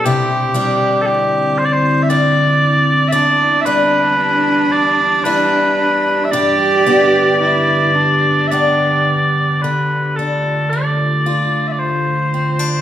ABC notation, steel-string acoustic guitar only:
X:1
M:3/4
L:1/16
Q:1/4=56
K:Ddor
V:1 name="Steel-string acoustic guitar"
[C,E]2 [G,DE]6 [G,DE]4 | [E,,E]2 [G,DE]6 [G,DE]4 | [G,,G]2 [B,DG]6 [B,DG]4 | D,2 D2 A,2 F4 C D |]